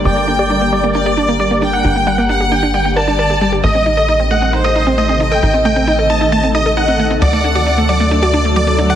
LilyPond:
<<
  \new Staff \with { instrumentName = "Supersaw synth" } { \time 4/4 \key g \minor \tempo 4 = 134 d''8 r16 d''8 r16 d''8 r16 d''8 r16 d''8 r16 fis''16~ | fis''16 r16 fis''8. r16 g''16 r16 g''16 r16 a''16 r16 a''8. r16 | ees''8 r16 ees''8 r16 fis''8 r16 ees''8 r16 ees''8 r16 g''16~ | g''16 r16 g''8. r16 a''16 r16 a''16 r16 ees''16 r16 fis''8. r16 |
d''8 r16 d''8 r16 d''8 r16 d''8 r16 d''8 r16 fis''16 | }
  \new Staff \with { instrumentName = "Violin section" } { \time 4/4 \key g \minor g''2 d''4. g''8~ | g''4 fis''4. d''4. | ees''2 c''4. ees''8~ | ees''4 ees''4. ees''4. |
fis''2 d''4. d''8 | }
  \new Staff \with { instrumentName = "Synth arpeggio sound" } { \time 4/4 \key g \minor g16 bes16 d'16 g'16 d'16 bes16 g16 bes16 d'16 g'16 d'16 bes16 g16 bes16 d'16 g'16 | d'16 bes16 g16 bes16 d'16 g'16 d'16 d'16 g16 bes16 bes'16 d'16 bes'16 g'16 g16 g'16 | a16 c'16 ees'16 a'16 ees'16 c'16 a16 c'16 ees'16 a'16 ees'16 c'16 a16 c'16 ees'16 a'16 | ees'16 c'16 a16 c'16 ees'16 a'16 ees'16 ees'16 a16 c'16 ees'16 a'16 ees'16 c'16 a16 c'16 |
fis16 a16 d'16 fis'16 d'16 a16 fis16 a16 d'16 fis'16 d'16 a16 fis16 a16 d'16 fis'16 | }
  \new Staff \with { instrumentName = "Ambient pad" } { \time 4/4 \key g \minor << { <bes bes'>1~ | <bes bes'>1 | <a a'>1~ | <a a'>1~ |
<a a'>1 | } \\ { <d g g'>1~ | <d g g'>1 | <c ees ees'>1~ | <c ees ees'>1 |
<d fis fis'>1 | } >> }
  \new Staff \with { instrumentName = "Analog synth bass" } { \clef bass \time 4/4 \key g \minor g,,1 | g,,1 | a,,1 | a,,1 |
d,1 | }
  \new DrumStaff \with { instrumentName = "Drums" } \drummode { \time 4/4 hh16 hh16 hh16 hh16 hh16 hh16 hh16 hh16 hh16 hh16 hh16 hh16 hh16 hh16 hh16 hh16 | hh16 hh16 hh16 hh16 hh16 hh16 hh16 hh16 hh16 hh16 hh16 hh16 hh16 hh16 hh16 hh16 | hh16 hh16 hh16 hh16 hh16 hh16 hh16 hh16 hh16 hh16 hh16 hh16 hh16 hh16 hh16 hh16 | hh16 hh16 hh16 hh16 hh16 hh16 hh16 hh16 hh16 hh16 hh16 hh16 hh16 hh16 hh16 hh16 |
hh16 hh16 hh16 hh16 hh16 hh16 hh16 hh16 hh16 hh16 hh16 hh16 hh16 hh16 hh16 hh16 | }
>>